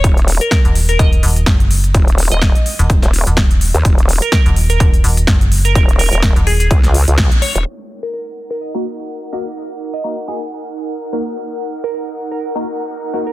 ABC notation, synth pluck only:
X:1
M:4/4
L:1/16
Q:"Swing 16ths" 1/4=126
K:Ebm
V:1 name="Synth pluck"
z3 B B z2 B e2 z6 | z3 e6 z6 z | z3 B B z2 B z6 z B | B z B B z2 A A z6 d d |
z3 B B z2 B e2 z6 | z3 e6 z6 z | z3 B B z2 B z6 z B |]